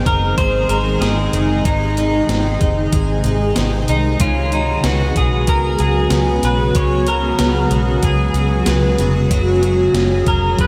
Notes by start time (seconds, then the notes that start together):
Already playing: G#2 C3 D#3 G#3 C4 D#4 G#4
0.06 F#1 D#4 A#4, kick, closed hi-hat
0.38 G#1 G#4 C5, kick, closed hi-hat
0.69 G#1 D#4 A#4, closed hi-hat
1.01 G#1 C4 G#4, snare, closed hi-hat
1.33 F#1 D#4, closed hi-hat
1.65 G#1 G#2 D#4, kick, closed hi-hat
1.97 D#4, closed hi-hat
2.28 G#1 C4, snare, closed hi-hat
2.61 F#1 D#4, kick, closed hi-hat
2.93 G#1 G#4, kick, closed hi-hat
3.24 G#1 D#4, closed hi-hat
3.56 G#1 C4, snare, closed hi-hat
3.88 C2 D#4, closed hi-hat
4.20 C#2 C#3 F#3 B3 F4 G#4, kick, closed hi-hat
4.52 D#4 F#4, closed hi-hat
4.84 C#2 B3 F#4, snare, closed hi-hat
5.16 B1 F#4 G#4, kick, closed hi-hat
5.47 C#2 G#4 A#4, kick, closed hi-hat
5.79 C#2 F#4 G#4, closed hi-hat
6.10 C#2 B3, snare, closed hi-hat
6.43 B1 F#4 B4, closed hi-hat
6.75 C#2 C#3 C#5, kick, closed hi-hat
7.07 F#4 A#4, closed hi-hat
7.39 C#2 B3, snare, closed hi-hat
7.71 B1 F#4, closed hi-hat
8.03 C#2 G#4, kick, closed hi-hat
8.34 C#2 F#4, closed hi-hat
8.66 C#2 B3, snare, closed hi-hat
8.98 F1 F#4, closed hi-hat
9.31 F#1 A#2 F#3 C#4, kick, closed hi-hat
9.63 F#4, closed hi-hat
9.94 F#1 C#4, snare, closed hi-hat
10.26 F1 F#4 A#4, kick, closed hi-hat
10.59 F#1 B4, kick, closed hi-hat